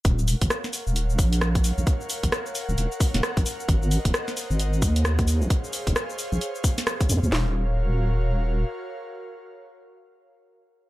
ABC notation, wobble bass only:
X:1
M:4/4
L:1/16
Q:"Swing 16ths" 1/4=132
K:Ebdor
V:1 name="Wobble bass" clef=bass
E,,,3 B,,, z3 E,,,3 B,,,4- B,,, B,,, | z3 B,,, z3 E,,, E,,, z2 E,,, z B,,, z2 | A,,,3 E,,, z3 A,,,3 E,,4- E,, B,,, | z3 F,,, z3 B,,, z6 F,, E,, |
E,,,12 z4 | z16 |]